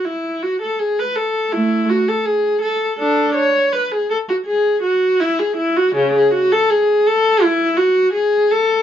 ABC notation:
X:1
M:4/4
L:1/16
Q:1/4=82
K:A
V:1 name="Viola"
E2 F A G B A2 [A,E]2 F A G2 A2 | [DA]2 c2 B G A F G2 F2 E G E F | C, G F A G2 A2 E2 F2 G2 A2 |]